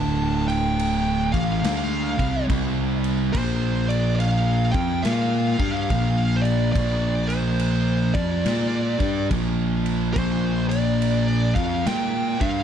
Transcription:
Already playing: D1 D2 A2 D3 A5
0.48 G5, crash
0.79 crash
1.32 A1 A2 E3 A3 F5, kick, crash
1.64 D2 D3 A3 D4, snare, crash
2.18 C2 C3 G3 C4, kick, crash
2.49 C2 C3 G3 C4, kick, crash
3.04 crash
3.33 A#1 A#2 F3 A#3 C5, kick, crash
3.89 D5, crash
4.16 D5
4.20 F5, crash
4.71 F2 F3 C4 F4 G5, kick, crash
5.02 A#2 A#3 F4 A#4 F5, snare, crash
5.60 G2 G3 D4 G4, kick, crash
5.72 F5
5.90 A#1 A#2 F3 A#3, kick, crash
6.36 C5
6.41 D5, crash
6.72 A#1 A#2 F3 D5, kick, crash
6.76 A#3
7.28 C5, crash
7.59 crash
8.14 F2 F3 C4 F4 D5, kick, crash
8.46 A#2 A#3 F4 A#4, snare, crash
9.00 G2 G3 D4 G4, kick, crash
9.31 A#1 A#2 F3 A#3, kick, crash
9.86 crash
10.13 A#1 A#2 F3 A#3 C5, kick, crash
10.69 D5, crash
11.02 crash
11.55 F2 F3 C4 F4 F5, kick, crash
11.86 A#2 A#3 F4 A#4 G5, snare, crash
12.41 G2 G3 D4 G4 F5, kick, crash

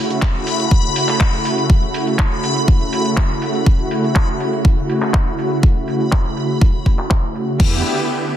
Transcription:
Already playing: C#3 A3 E4 F#4 B5
0.11 closed hi-hat, shaker
0.22 kick, clap, shaker
0.35 closed hi-hat, shaker
0.47 open hi-hat, shaker
0.60 closed hi-hat, shaker
0.71 kick, closed hi-hat, shaker
0.84 closed hi-hat, shaker
0.96 open hi-hat, shaker
1.09 clap, closed hi-hat, shaker
1.20 kick, clap
1.34 closed hi-hat, shaker
1.45 open hi-hat, shaker
1.58 closed hi-hat, shaker
1.70 kick, closed hi-hat, shaker
1.83 closed hi-hat, shaker
1.94 open hi-hat, shaker
2.07 closed hi-hat, shaker
2.19 kick, clap
2.32 closed hi-hat, shaker
2.44 open hi-hat, shaker
2.57 closed hi-hat, shaker
2.68 kick, closed hi-hat
2.81 closed hi-hat, shaker
2.93 open hi-hat, shaker
3.06 closed hi-hat, shaker
3.17 kick, clap
3.30 closed hi-hat, shaker
3.42 open hi-hat, shaker
3.55 closed hi-hat, shaker
3.66 kick
3.79 closed hi-hat, shaker
3.91 open hi-hat, shaker
4.04 closed hi-hat, shaker
4.16 kick, clap
4.29 closed hi-hat
4.40 open hi-hat, shaker
4.53 closed hi-hat, shaker
4.65 kick
4.78 closed hi-hat, shaker
4.90 open hi-hat, shaker
5.02 clap, closed hi-hat, shaker
5.14 kick, clap
5.39 open hi-hat, shaker
5.52 closed hi-hat, shaker
5.63 kick
5.76 closed hi-hat
5.88 open hi-hat, shaker
6.01 closed hi-hat, shaker
6.12 kick, clap
6.25 open hi-hat
6.37 open hi-hat, shaker
6.50 closed hi-hat, shaker
6.61 kick
6.75 closed hi-hat
6.86 kick, open hi-hat
6.99 clap, closed hi-hat
7.11 kick, clap
7.35 open hi-hat, shaker
7.48 closed hi-hat, shaker
7.60 E2 D3 B3 E4 G4, kick, crash

